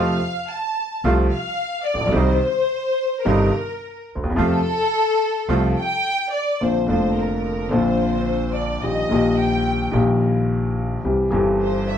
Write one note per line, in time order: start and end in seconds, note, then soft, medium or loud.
0.00 0.17 F2 medium
0.00 0.17 C3 medium
0.00 0.17 F3 medium
0.00 0.17 A3 medium
0.00 0.17 C4 medium
0.00 0.17 F4 medium
0.00 0.50 F5 medium
0.51 1.05 A5 medium
1.04 1.27 C2 medium
1.04 1.28 C2 medium
1.04 1.28 C3 medium
1.04 1.28 F3 medium
1.04 1.27 A3 medium
1.04 1.28 A3 medium
1.04 1.27 C4 medium
1.04 1.27 F4 medium
1.04 1.28 F4 medium
1.31 1.83 F5 medium
1.85 2.13 D5 medium
1.94 2.00 A1 soft
1.94 2.01 A1 soft
2.00 2.07 A#1 medium
2.00 2.07 A#1 soft
2.07 2.14 B1 medium
2.12 2.37 C2 medium
2.12 2.38 C2 medium
2.12 2.37 C3 medium
2.12 2.37 D#3 medium
2.12 2.37 G3 medium
2.12 2.38 G3 medium
2.12 2.38 C4 medium
2.12 2.37 D#4 medium
2.12 2.38 D#4 medium
2.12 3.25 C5 medium
3.24 3.49 G1 medium
3.24 3.49 G1 loud
3.24 3.49 G2 medium
3.24 3.49 C3 medium
3.24 3.49 D#3 medium
3.24 3.49 G3 medium
3.24 3.49 C4 medium
3.24 3.49 D#4 medium
3.24 4.08 A#4 medium
4.15 4.22 D2 soft
4.15 4.23 D2 soft
4.23 4.30 D#2 medium
4.30 4.36 E2 medium
4.30 4.37 E2 medium
4.36 4.59 F2 medium
4.36 4.61 F2 medium
4.36 4.59 C3 medium
4.36 4.60 F3 medium
4.36 4.60 A3 medium
4.36 4.60 C4 medium
4.36 4.60 F4 medium
4.36 6.02 A4 loud
5.48 5.72 C2 medium
5.48 5.72 C3 medium
5.48 5.72 F3 medium
5.48 5.71 A3 medium
5.48 5.72 A3 medium
5.48 5.72 C4 medium
5.48 5.72 F4 medium
5.78 6.30 G5 medium
6.34 6.61 D5 medium
6.61 6.84 A#1 soft
6.61 6.85 A#1 soft
6.61 6.85 A#2 soft
6.61 6.84 D3 soft
6.61 6.85 A#3 soft
6.61 6.85 C4 soft
6.61 6.85 F4 soft
6.61 6.88 C5 medium
6.86 7.68 F1 medium
6.86 7.68 F2 medium
6.86 7.67 D3 medium
6.86 7.68 A#3 medium
6.86 7.68 C4 medium
6.86 7.69 F4 medium
6.86 7.15 C5 medium
7.17 7.73 A#4 medium
7.69 8.77 A#1 medium
7.69 8.78 A#1 medium
7.69 8.77 A#2 medium
7.69 8.76 D3 medium
7.69 8.77 A#3 medium
7.69 8.77 C4 soft
7.69 8.55 C5 medium
7.73 8.78 F4 medium
8.55 8.83 D5 medium
8.83 9.06 A#1 medium
8.83 9.06 A#1 soft
8.83 9.06 A#2 soft
8.83 9.06 D#3 soft
8.83 9.06 G3 soft
8.83 9.06 A#3 soft
8.83 9.06 G4 soft
8.83 9.38 D#5 medium
9.09 9.89 A#1 medium
9.09 9.90 A#1 medium
9.09 9.89 A#2 medium
9.09 9.89 D#3 medium
9.09 9.89 G3 medium
9.09 9.90 A#3 medium
9.13 9.91 G4 medium
9.39 9.94 G5 medium
9.91 10.98 A#1 medium
9.91 10.99 A#2 medium
9.91 10.98 D#3 medium
9.91 10.98 G3 medium
9.91 10.99 A#3 medium
9.96 11.00 G4 medium
11.04 11.27 C2 medium
11.04 11.27 C2 soft
11.04 11.28 C3 medium
11.04 11.28 E3 soft
11.04 11.28 G3 soft
11.04 11.28 C4 soft
11.04 11.28 G4 soft
11.31 11.98 G1 medium
11.31 11.98 G2 medium
11.31 11.98 E3 medium
11.31 11.98 G3 medium
11.31 11.98 C4 medium
11.31 11.98 G4 medium
11.61 11.86 C5 medium
11.89 11.98 E5 medium